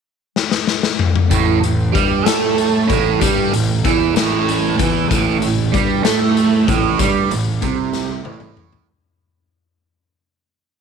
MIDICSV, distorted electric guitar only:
0, 0, Header, 1, 2, 480
1, 0, Start_track
1, 0, Tempo, 630915
1, 994, Time_signature, 6, 3, 24, 8
1, 8223, End_track
2, 0, Start_track
2, 0, Title_t, "Distorted electric guitar"
2, 0, Program_c, 0, 30
2, 989, Note_on_c, 0, 45, 112
2, 1215, Note_off_c, 0, 45, 0
2, 1224, Note_on_c, 0, 45, 72
2, 1423, Note_off_c, 0, 45, 0
2, 1462, Note_on_c, 0, 55, 94
2, 1711, Note_off_c, 0, 55, 0
2, 1711, Note_on_c, 0, 57, 94
2, 2188, Note_on_c, 0, 45, 93
2, 2190, Note_off_c, 0, 57, 0
2, 2428, Note_off_c, 0, 45, 0
2, 2434, Note_on_c, 0, 55, 98
2, 2671, Note_off_c, 0, 55, 0
2, 2678, Note_on_c, 0, 45, 68
2, 2873, Note_off_c, 0, 45, 0
2, 2925, Note_on_c, 0, 52, 100
2, 3158, Note_off_c, 0, 52, 0
2, 3163, Note_on_c, 0, 45, 93
2, 3631, Note_off_c, 0, 45, 0
2, 3634, Note_on_c, 0, 52, 107
2, 3870, Note_off_c, 0, 52, 0
2, 3873, Note_on_c, 0, 45, 105
2, 4095, Note_off_c, 0, 45, 0
2, 4104, Note_on_c, 0, 45, 74
2, 4307, Note_off_c, 0, 45, 0
2, 4352, Note_on_c, 0, 55, 104
2, 4586, Note_off_c, 0, 55, 0
2, 4589, Note_on_c, 0, 57, 92
2, 5067, Note_on_c, 0, 45, 104
2, 5070, Note_off_c, 0, 57, 0
2, 5308, Note_off_c, 0, 45, 0
2, 5317, Note_on_c, 0, 55, 98
2, 5553, Note_off_c, 0, 55, 0
2, 5555, Note_on_c, 0, 45, 69
2, 5751, Note_off_c, 0, 45, 0
2, 5791, Note_on_c, 0, 48, 103
2, 6262, Note_off_c, 0, 48, 0
2, 6265, Note_on_c, 0, 45, 89
2, 6743, Note_off_c, 0, 45, 0
2, 8223, End_track
0, 0, End_of_file